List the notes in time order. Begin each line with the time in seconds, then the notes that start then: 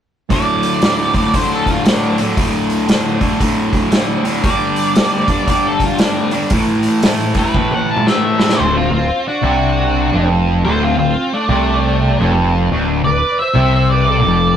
0.30 D2 A2 D3 D5, kick, open hi-hat
0.63 open hi-hat
0.82 D2 A2 D3, snare, open hi-hat
1.14 D2 A2 D3, kick, open hi-hat
1.34 D2 A2 D3 C5, kick, open hi-hat
1.52 A4
1.66 F4, kick, open hi-hat
1.85 D2 A2 D3 D4, snare, open hi-hat
2.18 D2 A2 D3, open hi-hat
2.37 D2 A2 D3, kick, open hi-hat
2.70 open hi-hat
2.89 D2 A2 D3, snare, open hi-hat
3.20 D2 A2 D3, kick, open hi-hat
3.40 D2 A2 D3, kick, open hi-hat
3.73 kick, open hi-hat
3.91 D2 A2 D3, snare, open hi-hat
4.23 D2 A2 D3, open hi-hat
4.43 G2 D3 G3 D5, kick, open hi-hat
4.76 open hi-hat
4.95 G2 D3 G3, snare, open hi-hat
5.28 G2 D3 G3, kick, open hi-hat
5.48 G2 D3 G3 D5, kick, open hi-hat
5.67 A4
5.80 kick, open hi-hat
5.85 F4
5.98 G2 D3 G3 D4, snare, open hi-hat
6.31 G2 D3 G3, open hi-hat
6.50 A2 E3 A3, kick, open hi-hat
6.83 open hi-hat
7.02 A2 E3 A3, snare, open hi-hat
7.34 A2 E3 A3, kick, open hi-hat
7.39 B4
7.54 A2 E3 A3, kick, high tom
7.71 F#5, high tom
7.91 A5
7.96 mid tom
8.07 A2 E3 A3 E5, snare
8.24 E5
8.38 A2 E3 A3, snare
8.49 snare
8.58 D1 D2 A4 C5
8.77 C4 F4
8.91 D1 D2 C4
8.95 F4
9.28 D4 F#4
9.42 C2 C3
10.13 F1 F2
10.65 D1 D2 A4 C5
10.82 C4 F4
10.97 D1 D2 C4 F4
11.33 A3 D4
11.49 C2 C3
12.19 F1 F2
12.71 D1 D2
13.03 D1 D2 B4 D5
13.39 C5 E5
13.54 C2 C3
13.74 C5 E5
13.90 B4 D5
14.06 A4 D5
14.25 F1 F2